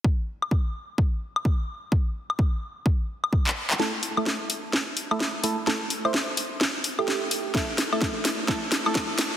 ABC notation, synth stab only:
X:1
M:4/4
L:1/16
Q:"Swing 16ths" 1/4=128
K:Cmix
V:1 name="Synth stab"
z16 | z16 | [A,EA] z2 [A,EA]8 [A,EA] z2 [A,EA] z | [A,EA] z2 [A,Ec] z6 z [A,EG]4- [A,EG] |
[A,EA] z2 [A,EA]4- [A,EA] [A,EA] z2 [A,EA]4- [A,EA] |]